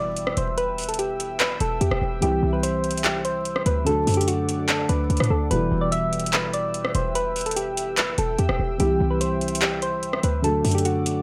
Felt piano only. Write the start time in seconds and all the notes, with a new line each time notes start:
Already playing: B2 E3 G3 E4 G4
2.21 C3 E3 G3 E4 G4
3.85 D3 F#3 A3 F#4 A4
5.49 B2 E3 G3 E4 G4
8.78 C3 E3 G3 E4 G4
10.42 D3 F#3 A3 F#4 A4